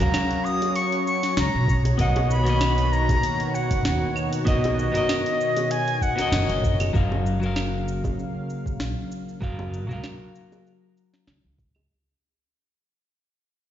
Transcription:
Already playing: F#3 C#4 F#4 C#5 A#5
0.00 C#2 F#4 A#4 F5, open hi-hat, cabasa
0.14 snare, open hi-hat, cabasa, claves
0.31 open hi-hat
0.45 D#6, cabasa
0.62 open hi-hat, high bongo, cabasa
0.76 C#6, open hi-hat, cabasa
0.92 open hi-hat
1.07 C#6, cabasa
1.23 snare, open hi-hat, cabasa
1.37 C#2 A#5, snare, open hi-hat, cabasa
1.54 B1
1.67 B2 D#3 F#4, kick, cabasa
1.85 open hi-hat, high bongo, cabasa
1.98 B1 B3 F#4 A#4 D#5 F#5, kick, open hi-hat, cabasa
2.16 open hi-hat, high bongo
2.31 B5, cabasa
2.43 A#3 B3 F#4, open hi-hat
2.47 D#5, cabasa
2.61 snare, open hi-hat, cabasa, claves
2.78 open hi-hat
2.92 A#5, cabasa
3.09 kick, open hi-hat, high bongo, cabasa
3.23 open hi-hat, cabasa
3.40 open hi-hat
3.54 F#5, cabasa
3.71 F#1, kick, open hi-hat, cabasa
3.85 D#2, snare, open hi-hat, cabasa
4.16 cabasa, claves
4.33 open hi-hat, cabasa
4.45 B1 B3 F#4 A#4 D#5, kick, open hi-hat, cabasa
4.64 open hi-hat, high bongo
4.79 cabasa
4.92 F#1 B3 F#4 A#4, open hi-hat
4.96 D#5, cabasa
5.09 snare, open hi-hat, cabasa, claves
5.26 open hi-hat
5.41 cabasa
5.57 open hi-hat, high bongo, cabasa
5.71 G#5, open hi-hat, cabasa
5.88 open hi-hat
6.02 F#5, kick, cabasa
6.16 B3 F#4 A#4, snare, open hi-hat, cabasa
6.21 D#5
6.32 F#1, snare, open hi-hat, cabasa
6.49 F#1, open hi-hat
6.63 kick, cabasa
6.80 open hi-hat, high bongo, cabasa, claves
6.93 F#1 C#3 F#3 A#3 F#4 A#4 F5, kick, cabasa
7.12 high bongo
7.26 cabasa
7.40 F#3 F#4 A#4, cabasa
7.46 F5
7.56 snare, cabasa, claves
7.88 cabasa
8.04 kick, high bongo, cabasa
8.19 cabasa
8.50 cabasa
8.66 C#2, kick, cabasa
8.80 A#1, snare, cabasa
9.12 cabasa
9.29 cabasa
9.41 F#1 F#3 F#4 A#4 F5, kick, cabasa
9.59 high bongo
9.74 cabasa
9.87 C#2 F#3 F#4, cabasa
9.91 A#4 F5
10.04 snare, cabasa, claves
10.35 cabasa
10.52 high bongo, cabasa
10.67 cabasa
10.97 cabasa
11.14 snare, cabasa
11.27 C#2, snare, cabasa
11.45 C#2
11.58 kick, cabasa
11.75 high bongo, cabasa, claves

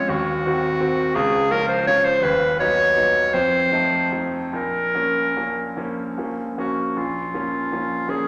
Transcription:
Already playing: F2 G#3 C#4 F4 C#5
0.08 D#1 D#2 F#4
0.46 D#3 C4 F#4
0.80 D#3 C4 F#4
1.15 C#2 G#4
1.51 F3 C#4 F4 A#4
1.68 C5
1.87 F3 C#4 F4 C#5
2.04 C5
2.22 D#1 D#2 B4
2.60 F#3 B3 D#4 C#5
2.96 F#3 B3 D#4
3.34 F2 C5
3.72 F3 A3 D#4
4.12 F3 A3 D#4
4.53 A#1 A#4
4.95 F3 A#3 C#4
5.37 F3 A#3 C#4
5.77 F3 A#3 C#4
6.18 F3 A#3 C#4
6.58 F3 A#3 C#4 F#4
6.97 A#1 F4
7.34 F3 A#3 C#4
7.72 F3 A#3 C#4
8.08 F3 A#3 C#4 G#4

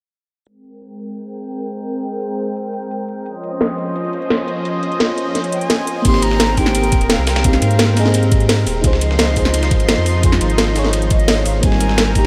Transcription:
0.47 G#3 C4 A#4 G5, closed hi-hat
0.64 closed hi-hat
0.82 closed hi-hat
0.99 closed hi-hat
1.17 closed hi-hat
1.34 closed hi-hat
1.43 closed hi-hat
1.52 closed hi-hat
1.69 closed hi-hat
1.87 closed hi-hat
2.04 closed hi-hat
2.13 closed hi-hat
2.21 closed hi-hat
2.39 closed hi-hat
2.56 closed hi-hat
2.65 closed hi-hat
2.74 closed hi-hat
2.83 closed hi-hat
2.91 closed hi-hat
3.09 closed hi-hat
3.26 F3 C#4 C5 D#5, closed hi-hat
3.44 closed hi-hat
3.61 snare, closed hi-hat
3.78 closed hi-hat
3.96 closed hi-hat
4.05 closed hi-hat
4.13 closed hi-hat
4.22 closed hi-hat
4.30 snare, closed hi-hat
4.48 closed hi-hat
4.65 closed hi-hat
4.83 closed hi-hat
4.92 closed hi-hat
5.00 snare, closed hi-hat
5.18 closed hi-hat
5.35 snare, closed hi-hat
5.44 closed hi-hat
5.52 G#5, closed hi-hat
5.61 closed hi-hat
5.70 snare, closed hi-hat
5.87 closed hi-hat
6.02 G#1 A#3 C4 D#4 A#4 C6, kick, closed hi-hat, ride, crash
6.08 G4
6.14 snare
6.22 A#5, closed hi-hat, ride
6.31 snare
6.40 snare, closed hi-hat, ride
6.55 A#3 C4 D#4 G5, kick, open hi-hat, ride
6.60 G4
6.66 snare
6.75 closed hi-hat, ride
6.84 closed hi-hat
6.92 D#1, kick, closed hi-hat, ride
7.01 closed hi-hat, ride
7.10 F5, snare, closed hi-hat, ride
7.19 C2
7.27 G5, snare, open hi-hat, ride
7.36 snare, ride
7.42 A#3 C4 D#4 F5, kick, closed hi-hat, ride
7.48 G4
7.53 snare, ride
7.62 G#2, closed hi-hat, ride
7.71 closed hi-hat
7.79 snare, closed hi-hat, ride
7.94 A#3 C4 D#4 D#5, snare, open hi-hat, ride
8.00 G#4
8.05 snare
8.14 closed hi-hat, ride
8.23 closed hi-hat
8.32 kick, closed hi-hat, ride
8.40 closed hi-hat
8.49 snare, closed hi-hat, open hi-hat
8.67 D#1, open hi-hat, ride
8.81 C#2 F3 D#4 F4 G#4 C6, kick, closed hi-hat, ride
8.87 C5
8.93 snare
9.01 closed hi-hat, ride
9.11 snare
9.19 snare, closed hi-hat, ride
9.34 D#4 F4 G#4, kick, open hi-hat, ride
9.39 C5
9.45 snare
9.54 closed hi-hat, ride
9.63 snare, closed hi-hat
9.71 G#1, kick, closed hi-hat, ride
9.80 closed hi-hat, ride
9.89 snare, closed hi-hat, ride
9.98 F2
10.06 open hi-hat, ride
10.21 D#4 F4 G#4, kick, closed hi-hat, ride
10.26 C5
10.32 snare, ride
10.41 G#1, closed hi-hat, ride
10.50 closed hi-hat
10.58 snare, closed hi-hat, ride
10.73 D#4 F4 G#4, snare, open hi-hat, ride
10.79 C#5
10.85 snare
10.93 closed hi-hat, ride
11.02 closed hi-hat
11.10 D#5, kick, closed hi-hat, ride
11.20 closed hi-hat
11.28 snare, closed hi-hat, open hi-hat
11.45 G#1 F5, open hi-hat, ride
11.61 G#1 A#3 C4 D#4 A#4 G#5, kick, closed hi-hat, ride
11.66 G3
11.72 snare
11.80 closed hi-hat, ride
11.89 snare
11.98 snare, closed hi-hat, ride
12.13 A#3 C4 D#4 A#5, kick, open hi-hat, ride
12.19 G4

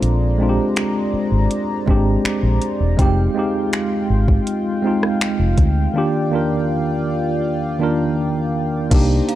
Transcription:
Already playing: G#3 C4 D4 F4 C5 D5 A#5
0.02 A#1, closed hi-hat
0.38 G#3 C4 D4
0.43 F4
0.49 G4
0.76 finger snap, closed hi-hat
1.13 muted fingered electric bass stroke
1.32 G#1
1.51 closed hi-hat
1.86 G#1 G#3 C4 D4, kick
1.91 G4
2.25 finger snap, muted fingered electric bass stroke, closed hi-hat
2.43 A#1
2.62 closed hi-hat
2.80 E1
2.97 F1 G#3 C4 D#4 F4 F5 G5, kick, closed hi-hat
3.02 G4
3.34 G#3 C4 D#4
3.39 G4
3.73 finger snap, closed hi-hat
4.10 G#1
4.28 kick
4.47 closed hi-hat
4.82 G#3 C4 D#4
4.87 F4
5.03 cross-stick
5.21 finger snap, closed hi-hat
5.39 F1
5.58 D2, kick, closed hi-hat
5.94 D#3 A#3 D4 F4 D5
5.98 G4
6.31 D#3 A#3 D4 F4
6.35 A#4
7.79 D#3 A#3 D4 F4
7.83 A#4
8.90 C2 D#3 A#3 D4 D#4 C5 D5 A#5, kick, closed hi-hat, crash
8.95 G4
9.28 F5, closed hi-hat

